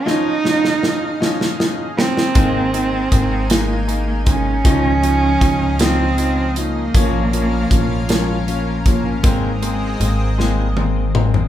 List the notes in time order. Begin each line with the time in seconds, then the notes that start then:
0.05 F3 C#4 D#4 G#4 D#5 F5, snare
0.43 F3 C#4 D#4, snare
0.65 snare
0.82 F3 C#4 D#4, snare
1.20 F3 C#4 D#4, snare
1.41 snare
1.59 F3 C#4 D#4, snare
1.96 F3 C4 C#4 D#4, snare
2.17 snare
2.35 G#1 D#3 G#3 A#3 D#4 A#4 G#5, kick, closed hi-hat
2.55 A#3
2.74 G#3 A#3 D#4, closed hi-hat
2.92 D#3
3.11 G#1 G#3 A#3 D#4, kick, closed hi-hat
3.31 D#4
3.50 D#3 G#3 A#3 D#4, snare, closed hi-hat
3.69 A#3
3.87 G#3 A#3 D#4, closed hi-hat
4.08 D#3
4.26 G#3 A#3 C#4 D#4, kick, closed hi-hat
4.45 D#4
4.64 C#2 F3 C#4 D#4 G#4 D#5 F5, kick, closed hi-hat
4.83 G#3
5.02 F3 C#4 D#4, closed hi-hat
5.22 F3
5.41 C#2 F3 G#3 C#4 D#4, kick, closed hi-hat
5.61 D#4
5.79 F3 C4 C#4 D#4, snare, closed hi-hat
5.99 G#3
6.17 F3 C#4 D#4, closed hi-hat
6.37 F3
6.56 F3 G#3 A#3 C#4 D#4, closed hi-hat
6.75 D#4
6.94 A#1 F3 A#3 C#4 F4 A#4 F5, kick, closed hi-hat
7.13 A#3
7.32 F3 A#3 C#4, closed hi-hat
7.52 F3
7.70 A#1 F3 A#3 C#4, kick, closed hi-hat
7.90 C#4
8.08 F3 G#3 A#3 C#4, snare, closed hi-hat
8.29 A#3
8.47 F3 A#3 C#4, closed hi-hat
8.67 F3
8.86 F3 A#3 C#4, kick, closed hi-hat
9.05 C#4
9.23 G#1 D#3 G#3 A#3 C4 G#4 D#5, kick, closed hi-hat
9.43 A#3
9.62 G#3 A#3 C4, closed hi-hat
9.81 D#3
10.00 G#1 G#3 A#3 C4, closed hi-hat
10.19 C4
10.38 D#3 G#3 A#3 C4, snare
10.51 G#3
10.58 G3 A#3
10.70 G#3
10.76 G#3 A#3 C4, high tom
10.96 D#3
11.15 G#3 A#3 C4, mid tom
11.34 C4, floor tom